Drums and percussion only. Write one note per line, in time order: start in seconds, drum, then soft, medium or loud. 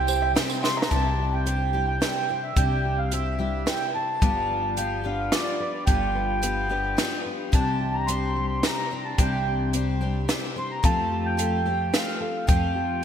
0.08 tambourine medium
0.36 snare medium
0.36 closed hi-hat medium
0.49 tambourine medium
0.63 snare medium
0.63 tambourine soft
0.82 snare medium
0.91 kick medium
0.91 closed hi-hat soft
1.47 closed hi-hat medium
2.02 snare medium
2.02 closed hi-hat medium
2.56 kick medium
2.56 closed hi-hat medium
3.12 closed hi-hat medium
3.67 snare medium
3.67 closed hi-hat soft
4.22 kick medium
4.22 closed hi-hat soft
4.77 closed hi-hat medium
5.32 snare medium
5.32 closed hi-hat soft
5.87 kick medium
5.87 closed hi-hat soft
6.43 closed hi-hat medium
6.98 snare medium
6.98 closed hi-hat medium
7.53 kick medium
7.53 closed hi-hat medium
8.08 closed hi-hat medium
8.63 snare medium
8.63 closed hi-hat medium
9.18 kick medium
9.18 closed hi-hat medium
9.73 closed hi-hat medium
10.29 snare medium
10.29 closed hi-hat medium
10.84 kick medium
10.84 closed hi-hat soft
11.39 closed hi-hat medium
11.94 snare medium
11.94 closed hi-hat medium
12.48 kick loud
12.48 closed hi-hat soft